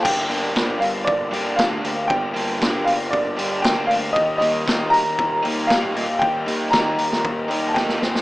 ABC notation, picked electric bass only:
X:1
M:4/4
L:1/8
Q:1/4=117
K:Gm
V:1 name="Picked electric bass" clef=bass
G,,, G,,, G,,, G,,, G,,, G,,, D,, D,, | G,,, G,,, G,,, G,,, G,,, G,,, D,, D,, | E,, E,, E,, E,, E,, E,, B,, B,, | E,, E,, E,, E,, E,, E,, G,,, _A,,, |]